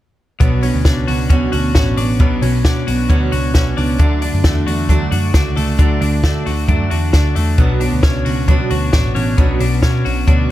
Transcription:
0.40 B1 B2 F#3 B3 D4 F#4 C#5, kick, closed hi-hat
0.61 B3 C#4 D4 F#4 C#5, open hi-hat
0.74 D2
0.84 C#2 B3 D4 F#4 C#5, kick, snare, closed hi-hat
1.07 C#2 B3 D4 F#4 C#5, open hi-hat
1.29 B2 F#3 B3 C#4 D4 F#4 C#5, kick, closed hi-hat
1.52 D2 B3 D4 F#4 C#5, open hi-hat
1.74 A1 B3 C#4 D4 F#4 C#5, kick, snare, closed hi-hat
1.96 A1 B3 D4 F#4 C#5, open hi-hat
2.19 B1 B2 F#3 B3 D4 F#4 C#5, kick, closed hi-hat
2.41 B1 B3 C#4 D4 F#4 C#5, open hi-hat
2.63 B2 B3 D4 F#4 C#5, kick, snare, closed hi-hat
2.86 B1 B3 D4 F#4 C#5, open hi-hat
3.08 D2 B2 F#3 B3 C#4 D4 F#4 C#5, kick, closed hi-hat
3.31 C#2 B3 D4 F#4 C#5, open hi-hat
3.53 B1 B3 C#4 D4 F#4 C#5, kick, snare, closed hi-hat
3.76 C#2 B3 D4 F#4 C#5, open hi-hat
3.98 D2 D3 F#3 A3 D4 F#4 D5, kick, closed hi-hat
4.21 A3 D4 F#4 D5, open hi-hat
4.34 F#2
4.44 E2 A3 D4 F#4 D5, kick, snare, closed hi-hat
4.66 E2 A3 D4 F#4 D5, open hi-hat
4.89 D3 F#3 A3 D4 F#4 D5, kick, closed hi-hat
5.11 F#2 A3 D4 F#4 D5, open hi-hat
5.33 C#2 A3 D4 F#4 D5, kick, snare, closed hi-hat
5.55 C#2 A3 D4 F#4 D5, open hi-hat
5.78 D2 D3 F#3 A3 D4 F#4 D5, kick, closed hi-hat
6.01 D2 A3 D4 F#4 D5, open hi-hat
6.22 D3 A3 D4 F#4 D5, kick, snare, closed hi-hat
6.46 D2 A3 D4 F#4 D5, open hi-hat
6.68 F#2 D3 F#3 A3 D4 F#4 D5, kick, closed hi-hat
6.90 E2 A3 D4 F#4 D5, open hi-hat
7.12 D2 A3 D4 F#4 D5, kick, snare, closed hi-hat
7.35 E2 A3 D4 F#4 D5, open hi-hat
7.58 B1 B2 F#3 B3 D4 F#4 C#5, kick, closed hi-hat
7.80 B3 D4 F#4 C#5, open hi-hat
7.92 D2
8.03 C#2 B3 C#4 D4 F#4 C#5, kick, snare, closed hi-hat
8.25 C#2 B3 D4 F#4 C#5, open hi-hat
8.48 B2 F#3 B3 D4 F#4 C#5, kick, closed hi-hat
8.70 D2 B3 D4 F#4 C#5, open hi-hat
8.92 A1 B3 D4 F#4 C#5, kick, snare, closed hi-hat
9.14 A1 B3 C#4 D4 F#4 C#5, open hi-hat
9.38 B1 B2 F#3 B3 D4 F#4 C#5, kick, closed hi-hat
9.59 B1 B3 D4 F#4 C#5, open hi-hat
9.82 B2 B3 C#4 D4 F#4 C#5, kick, snare, closed hi-hat
10.04 B1 B3 D4 F#4 C#5, open hi-hat
10.26 D2 B2 F#3 B3 D4 F#4 C#5, kick, closed hi-hat

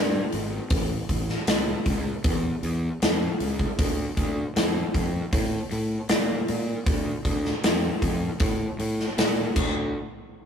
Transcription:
Already playing: G2
0.32 G#1, open hi-hat
0.70 A1, kick, open hi-hat
1.09 A1, kick, open hi-hat
1.29 snare
1.47 C#2, snare, open hi-hat
1.86 C#2, kick, open hi-hat
2.24 E2, kick, open hi-hat
2.63 E2, open hi-hat
3.02 F2, snare, open hi-hat
3.40 C#2, open hi-hat
3.59 kick
3.79 D2, kick, open hi-hat
4.17 D2, kick, open hi-hat
4.56 F2, snare, open hi-hat
4.94 F2, kick, open hi-hat
5.32 A2, kick, open hi-hat
5.71 A2, open hi-hat
6.09 A#2, snare, open hi-hat
6.48 A#2, open hi-hat
6.86 D2, kick, open hi-hat
7.25 D2, kick, open hi-hat
7.45 snare
7.63 F2, snare, open hi-hat
8.02 F2, kick, open hi-hat
8.40 A2, kick, open hi-hat
8.79 A2, open hi-hat
9.00 snare
9.18 A#2, snare, open hi-hat
9.56 D2, kick, crash

